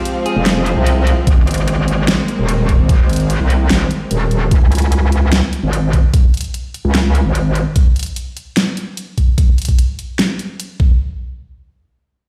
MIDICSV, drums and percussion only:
0, 0, Header, 1, 2, 480
1, 0, Start_track
1, 0, Tempo, 405405
1, 1505, Time_signature, 4, 2, 24, 8
1, 14547, End_track
2, 0, Start_track
2, 0, Title_t, "Drums"
2, 64, Note_on_c, 9, 42, 78
2, 182, Note_off_c, 9, 42, 0
2, 304, Note_on_c, 9, 42, 50
2, 423, Note_off_c, 9, 42, 0
2, 544, Note_on_c, 9, 38, 117
2, 544, Note_on_c, 9, 42, 80
2, 662, Note_off_c, 9, 38, 0
2, 662, Note_off_c, 9, 42, 0
2, 784, Note_on_c, 9, 42, 51
2, 903, Note_off_c, 9, 42, 0
2, 1024, Note_on_c, 9, 42, 76
2, 1143, Note_off_c, 9, 42, 0
2, 1265, Note_on_c, 9, 42, 52
2, 1383, Note_off_c, 9, 42, 0
2, 1504, Note_on_c, 9, 36, 122
2, 1505, Note_on_c, 9, 42, 73
2, 1623, Note_off_c, 9, 36, 0
2, 1623, Note_off_c, 9, 42, 0
2, 1745, Note_on_c, 9, 42, 45
2, 1785, Note_off_c, 9, 42, 0
2, 1785, Note_on_c, 9, 42, 59
2, 1825, Note_off_c, 9, 42, 0
2, 1825, Note_on_c, 9, 42, 73
2, 1867, Note_off_c, 9, 42, 0
2, 1867, Note_on_c, 9, 42, 33
2, 1985, Note_off_c, 9, 42, 0
2, 1985, Note_on_c, 9, 42, 73
2, 2103, Note_off_c, 9, 42, 0
2, 2225, Note_on_c, 9, 42, 50
2, 2343, Note_off_c, 9, 42, 0
2, 2465, Note_on_c, 9, 38, 122
2, 2465, Note_on_c, 9, 42, 73
2, 2583, Note_off_c, 9, 38, 0
2, 2583, Note_off_c, 9, 42, 0
2, 2704, Note_on_c, 9, 42, 49
2, 2822, Note_off_c, 9, 42, 0
2, 2943, Note_on_c, 9, 42, 71
2, 3061, Note_off_c, 9, 42, 0
2, 3184, Note_on_c, 9, 36, 62
2, 3184, Note_on_c, 9, 42, 49
2, 3302, Note_off_c, 9, 42, 0
2, 3303, Note_off_c, 9, 36, 0
2, 3424, Note_on_c, 9, 36, 121
2, 3424, Note_on_c, 9, 42, 71
2, 3543, Note_off_c, 9, 36, 0
2, 3543, Note_off_c, 9, 42, 0
2, 3664, Note_on_c, 9, 42, 45
2, 3705, Note_off_c, 9, 42, 0
2, 3705, Note_on_c, 9, 42, 59
2, 3745, Note_off_c, 9, 42, 0
2, 3745, Note_on_c, 9, 42, 72
2, 3788, Note_off_c, 9, 42, 0
2, 3788, Note_on_c, 9, 42, 35
2, 3905, Note_off_c, 9, 42, 0
2, 3905, Note_on_c, 9, 42, 73
2, 4024, Note_off_c, 9, 42, 0
2, 4146, Note_on_c, 9, 42, 48
2, 4264, Note_off_c, 9, 42, 0
2, 4385, Note_on_c, 9, 38, 119
2, 4385, Note_on_c, 9, 42, 74
2, 4503, Note_off_c, 9, 38, 0
2, 4503, Note_off_c, 9, 42, 0
2, 4625, Note_on_c, 9, 42, 49
2, 4744, Note_off_c, 9, 42, 0
2, 4864, Note_on_c, 9, 42, 70
2, 4983, Note_off_c, 9, 42, 0
2, 5104, Note_on_c, 9, 42, 47
2, 5223, Note_off_c, 9, 42, 0
2, 5344, Note_on_c, 9, 36, 115
2, 5344, Note_on_c, 9, 42, 71
2, 5462, Note_off_c, 9, 36, 0
2, 5462, Note_off_c, 9, 42, 0
2, 5585, Note_on_c, 9, 42, 44
2, 5625, Note_off_c, 9, 42, 0
2, 5625, Note_on_c, 9, 42, 57
2, 5664, Note_off_c, 9, 42, 0
2, 5664, Note_on_c, 9, 42, 73
2, 5706, Note_off_c, 9, 42, 0
2, 5706, Note_on_c, 9, 42, 34
2, 5823, Note_off_c, 9, 42, 0
2, 5823, Note_on_c, 9, 42, 73
2, 5942, Note_off_c, 9, 42, 0
2, 6065, Note_on_c, 9, 42, 49
2, 6183, Note_off_c, 9, 42, 0
2, 6304, Note_on_c, 9, 38, 116
2, 6304, Note_on_c, 9, 42, 73
2, 6423, Note_off_c, 9, 38, 0
2, 6423, Note_off_c, 9, 42, 0
2, 6545, Note_on_c, 9, 42, 47
2, 6663, Note_off_c, 9, 42, 0
2, 6785, Note_on_c, 9, 42, 70
2, 6903, Note_off_c, 9, 42, 0
2, 7024, Note_on_c, 9, 36, 58
2, 7025, Note_on_c, 9, 42, 48
2, 7142, Note_off_c, 9, 36, 0
2, 7144, Note_off_c, 9, 42, 0
2, 7264, Note_on_c, 9, 36, 112
2, 7265, Note_on_c, 9, 42, 74
2, 7383, Note_off_c, 9, 36, 0
2, 7383, Note_off_c, 9, 42, 0
2, 7506, Note_on_c, 9, 42, 46
2, 7546, Note_off_c, 9, 42, 0
2, 7546, Note_on_c, 9, 42, 60
2, 7585, Note_off_c, 9, 42, 0
2, 7585, Note_on_c, 9, 42, 75
2, 7628, Note_off_c, 9, 42, 0
2, 7628, Note_on_c, 9, 42, 35
2, 7745, Note_off_c, 9, 42, 0
2, 7745, Note_on_c, 9, 42, 73
2, 7863, Note_off_c, 9, 42, 0
2, 7985, Note_on_c, 9, 42, 50
2, 8103, Note_off_c, 9, 42, 0
2, 8224, Note_on_c, 9, 38, 110
2, 8224, Note_on_c, 9, 42, 73
2, 8343, Note_off_c, 9, 38, 0
2, 8343, Note_off_c, 9, 42, 0
2, 8464, Note_on_c, 9, 42, 49
2, 8583, Note_off_c, 9, 42, 0
2, 8704, Note_on_c, 9, 42, 73
2, 8822, Note_off_c, 9, 42, 0
2, 8944, Note_on_c, 9, 42, 49
2, 9062, Note_off_c, 9, 42, 0
2, 9184, Note_on_c, 9, 42, 79
2, 9185, Note_on_c, 9, 36, 110
2, 9303, Note_off_c, 9, 36, 0
2, 9303, Note_off_c, 9, 42, 0
2, 9425, Note_on_c, 9, 42, 46
2, 9465, Note_off_c, 9, 42, 0
2, 9465, Note_on_c, 9, 42, 61
2, 9504, Note_off_c, 9, 42, 0
2, 9504, Note_on_c, 9, 42, 76
2, 9547, Note_off_c, 9, 42, 0
2, 9547, Note_on_c, 9, 42, 37
2, 9665, Note_off_c, 9, 42, 0
2, 9665, Note_on_c, 9, 42, 75
2, 9784, Note_off_c, 9, 42, 0
2, 9905, Note_on_c, 9, 42, 52
2, 10024, Note_off_c, 9, 42, 0
2, 10145, Note_on_c, 9, 38, 108
2, 10145, Note_on_c, 9, 42, 78
2, 10263, Note_off_c, 9, 38, 0
2, 10263, Note_off_c, 9, 42, 0
2, 10385, Note_on_c, 9, 42, 51
2, 10503, Note_off_c, 9, 42, 0
2, 10624, Note_on_c, 9, 42, 75
2, 10742, Note_off_c, 9, 42, 0
2, 10864, Note_on_c, 9, 36, 55
2, 10865, Note_on_c, 9, 42, 51
2, 10982, Note_off_c, 9, 36, 0
2, 10983, Note_off_c, 9, 42, 0
2, 11104, Note_on_c, 9, 36, 107
2, 11105, Note_on_c, 9, 42, 75
2, 11222, Note_off_c, 9, 36, 0
2, 11223, Note_off_c, 9, 42, 0
2, 11345, Note_on_c, 9, 42, 47
2, 11386, Note_off_c, 9, 42, 0
2, 11386, Note_on_c, 9, 42, 63
2, 11425, Note_off_c, 9, 42, 0
2, 11425, Note_on_c, 9, 42, 75
2, 11466, Note_on_c, 9, 36, 52
2, 11468, Note_off_c, 9, 42, 0
2, 11468, Note_on_c, 9, 42, 37
2, 11585, Note_off_c, 9, 36, 0
2, 11586, Note_off_c, 9, 42, 0
2, 11586, Note_on_c, 9, 42, 75
2, 11704, Note_off_c, 9, 42, 0
2, 11825, Note_on_c, 9, 42, 52
2, 11944, Note_off_c, 9, 42, 0
2, 12066, Note_on_c, 9, 38, 108
2, 12066, Note_on_c, 9, 42, 79
2, 12184, Note_off_c, 9, 38, 0
2, 12184, Note_off_c, 9, 42, 0
2, 12305, Note_on_c, 9, 42, 52
2, 12424, Note_off_c, 9, 42, 0
2, 12546, Note_on_c, 9, 42, 76
2, 12664, Note_off_c, 9, 42, 0
2, 12784, Note_on_c, 9, 36, 105
2, 12903, Note_off_c, 9, 36, 0
2, 14547, End_track
0, 0, End_of_file